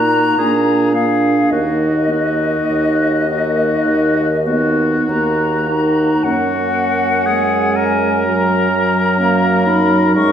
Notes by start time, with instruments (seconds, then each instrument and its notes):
Already playing: bassoon A#2, french horn A#3, clarinet D#4, oboe F#4, flute A#5
0.38 bassoon A#2, french horn A#3, clarinet D4, oboe G#4
0.93 french horn A#3, clarinet D4, oboe G#4, flute F5
1.51 bassoon D#2, french horn A#3, clarinet D#4, oboe F#4, flute D#5
2.11 french horn A#3, clarinet D#4, oboe F#4
2.70 bassoon D#2, french horn A#3
3.28 clarinet D#4, oboe F#4
3.85 bassoon D#2
4.46 french horn B3, clarinet D#4, oboe F#4
5.08 bassoon D#2, french horn A#3, flute A#5
5.69 clarinet D#4, oboe F#4
6.24 bassoon F#2, french horn A#3, clarinet C#4, oboe F#4, flute F#5
7.26 french horn G#3, oboe G#4
7.76 oboe A#4, flute G#5
8.25 french horn F#3, flute A#5
8.72 french horn F#3
9.19 clarinet A#3
9.66 clarinet D#4, flute B5
10.15 bassoon F#2, french horn G#3, oboe A#4, flute C#6